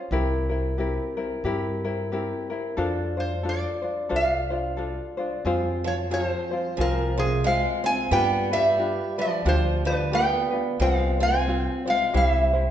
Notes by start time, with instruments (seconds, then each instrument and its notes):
Already playing: ukulele C#4 F4 C5
0.11 upright bass C2, ukulele C4 E4 G4 A#4
0.49 ukulele C4 E4 A#4
0.78 ukulele C4 E4 G4 A#4
1.17 ukulele C4 E4 A#4
1.44 upright bass G2, ukulele C4 E4 G4 A#4
1.84 ukulele C4 E4 A#4
2.12 ukulele C4 E4 G4 A#4
2.50 ukulele C4 E4 A#4
2.77 upright bass F2, ukulele D4 F4 A4 C5
3.17 ukulele D4 F4 C5, resonator guitar played with a steel bar C5
3.43 ukulele D4 F4 A4 C5
3.49 resonator guitar played with a steel bar D5
3.82 ukulele D4 F4 C5
4.09 upright bass C2, ukulele D4 F4 A4 C5
4.16 resonator guitar played with a steel bar F5
4.50 ukulele D4 F4 C5
4.77 ukulele D4 F4 A4 C5
5.17 ukulele D4 F4 C5
5.45 upright bass F2, ukulele C4 F4 G#4 C5
5.84 steel-string acoustic guitar F3, ukulele F4, resonator guitar played with a steel bar C#5
6.11 steel-string acoustic guitar F3, ukulele C4 F4 G#4 C5, resonator guitar played with a steel bar C#5
6.25 resonator guitar played with a steel bar C5
6.51 ukulele C4 F4 C5
6.77 upright bass C2, steel-string acoustic guitar F3, ukulele C4 F4 G#4 C5
6.81 resonator guitar played with a steel bar A#4
7.18 steel-string acoustic guitar C3, ukulele C4 F4 C5, resonator guitar played with a steel bar G#4
7.44 steel-string acoustic guitar G#3, ukulele C4 F4 G#4 C5, resonator guitar played with a steel bar F5
7.83 steel-string acoustic guitar C4, ukulele C4 F4 C5, resonator guitar played with a steel bar G#5
8.11 upright bass G2, steel-string acoustic guitar B3, ukulele D4 F4 G4 B4, resonator guitar played with a steel bar G5
8.51 steel-string acoustic guitar G3, ukulele D4 F4 B4, resonator guitar played with a steel bar E5
8.78 ukulele D4 F4 G4 B4
9.18 steel-string acoustic guitar F3, ukulele D4 F4 B4, resonator guitar played with a steel bar D5
9.45 upright bass D2, steel-string acoustic guitar F3, ukulele D4 F4 G4, resonator guitar played with a steel bar C5
9.85 steel-string acoustic guitar D3, ukulele D4 F4 B4, resonator guitar played with a steel bar B4
10.11 steel-string acoustic guitar B3, ukulele D4 F4 G4 B4, resonator guitar played with a steel bar G5
10.51 ukulele D4 F4 B4
10.80 upright bass C2, steel-string acoustic guitar G#3, ukulele C4 F4 G#4 C5, resonator guitar played with a steel bar F5
11.19 steel-string acoustic guitar C4, ukulele C4 F4 C5, resonator guitar played with a steel bar G#5
11.47 ukulele C4 F4 G#4 C5
11.85 steel-string acoustic guitar G#3, ukulele C4 F4 C5
11.90 resonator guitar played with a steel bar F5
12.13 upright bass C2, steel-string acoustic guitar G#3, ukulele C4 E4 G4 C5, resonator guitar played with a steel bar F5
12.25 steel-string acoustic guitar G3, resonator guitar played with a steel bar E5
12.53 ukulele C4 E4 C5